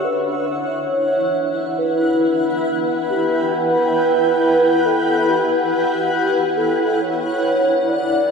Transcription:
Already playing: D4 E5 F#5
0.04 E4 B4
0.38 B4
0.46 C#5
1.78 B4
2.11 G5
3.10 G4
3.54 B4
4.85 A4
5.29 G4
6.57 A4
6.98 D4 C#5
7.14 A4
7.35 E5
7.88 D5

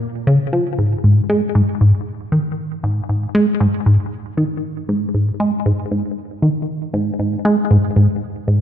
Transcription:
0.27 C#3
0.53 F3
0.78 G#2
1.04 G#2
1.29 G#3
1.55 G#2
1.81 G#2
2.32 D#3
2.83 G#2
3.09 G#2
3.35 G#3
3.60 G#2
3.86 G#2
4.37 D#3
4.89 G#2
5.14 G#2
5.40 G#3
5.66 G#2
5.91 G#2
6.42 D#3
6.93 G#2
7.19 G#2
7.45 G#3
7.71 G#2
7.96 G#2
8.47 G#2

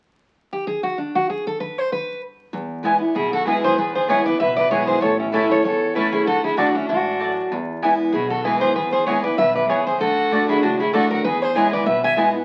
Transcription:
0.53 G4
0.67 G#4
0.83 F#4
0.98 D4
1.15 F#4
1.30 G#4
1.47 A4
1.60 B4
1.78 C5
1.92 B4
2.53 E2
2.83 E3 G#3 B3 E4 B4 G#5
3.01 B3 E4
3.15 B1 B2 E4 G#4
3.33 F#4 A4
3.45 E3 G#3 B3 E4 G#4 B4 G#5
3.64 G#4 C5
3.77 E2 G#4 B4
3.94 G#4 C5
4.08 D2 E3 G#3 B3 E4 G#4 B4 C#5 G#5
4.25 B3 E4 B4 D5
4.40 C#2 B2 B4 E5
4.57 B4 D5
4.70 B1 E3 G#3 B3 E4 G#4 B4 C#5 G#5
4.87 G#4 C5
5.01 A1 A2 A4 C#5
5.19 C#4 E4
5.32 E3 A3 C#4 E4 A4 C#5 A5
5.50 C#4 E4 A4 C#5
5.64 E2 A4 C#5
5.95 E3 A3 C#4 E4 B4 C#5 A5
6.12 E4 G#4
6.27 D2 D3 F#4 A4
6.44 E4 G#4
6.57 D3 A3 D4 F#4 D5 A5
6.75 C#4 D4 E4 F#4
6.89 A1 G#2 D4 F#4
7.20 F#2 A3 F#4 D5 A5
7.51 E2
7.82 E3 G#3 B3 E4 B4 G#5
8.12 B1 B2 E4 G#4
8.30 F#4 A4
8.44 E3 G#3 B3 E4 G#4 B4 G#5
8.61 G#4 C5
8.75 E2 G#4 B4
8.92 G#4 C5
9.06 E3 G#3 B3 E4 G#4 B4 C#5 G#5
9.23 B3 E4 B4 D5
9.38 F#2 B2 B4 E5
9.55 B4 D5
9.69 E2 C#3 B3 E4 G#4 B4 C#5 G#5
9.86 G#4 C5
10.00 D2 D3 F#4 A4
10.31 D3 A3 D4 F#4 D5 A5
10.48 E4 G#4
10.63 C#2 A2 D4 F#4
10.79 E4 G#4
10.93 D2 D3 A3 D4 F#4 A4 D5 A5
11.11 F#4 A#4
11.24 E2 G#4 B4
11.41 G#4 C5
11.55 E3 G#3 B3 E4 G#4 B4 C#5 G#5
11.73 B4 D5
11.86 B1 B2 B4 E5
12.04 E5 G#5
12.16 E3 G#3 B3 E4 B4 G#5
12.34 B3 E4

